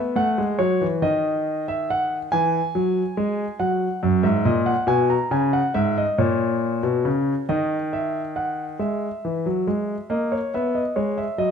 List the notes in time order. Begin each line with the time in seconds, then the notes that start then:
Already playing: B3
0.16 A3 F#5
0.38 G#3
0.59 F#3 C#5
0.81 E3
1.02 D#3 D#5
1.68 E5
1.90 F#5
2.32 E3 G#5
2.75 F#3
3.17 G#3
3.60 F#3 F#5
4.03 F#2
4.23 G#2 E5
4.45 A#2 D#5
4.66 F#5
4.87 B2 G#5
5.10 A#5
5.31 C#3 G#5
5.53 F#5
5.74 G#2 E5
5.98 D#5
6.18 A#2 C#5
6.83 B2
7.05 C#3
7.49 D#3 D#5
7.93 E5
8.36 F#5
8.79 G#3 E5
9.25 E3
9.46 F#3
9.67 G#3
10.10 A#3 D#5
10.32 C#5
10.54 B3 E5
10.75 D#5
10.96 G#3 C#5
11.18 E5
11.38 F#3 D#5